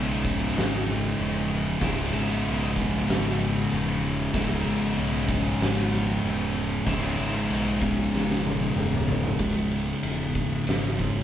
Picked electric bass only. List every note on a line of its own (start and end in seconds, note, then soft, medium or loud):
0.00 0.50 B1 loud
0.57 1.13 G#1 medium
1.19 1.76 E1 medium
1.82 2.10 C#1 medium
2.14 2.42 G#1 medium
2.45 3.02 B1 loud
3.08 3.65 G#1 medium
3.72 4.28 E1 medium
4.34 4.63 C#1 medium
4.66 4.94 G#1 medium
4.97 5.54 B1 medium
5.61 6.17 G#1 medium
6.24 6.80 E1 medium
6.87 7.15 C#1 medium
7.19 7.47 G#1 medium
7.50 8.07 B1 loud
8.13 8.70 G#1 medium
8.76 9.33 E1 medium
9.40 9.91 C#1 medium
10.02 10.54 E1 medium
10.67 11.18 G#1 medium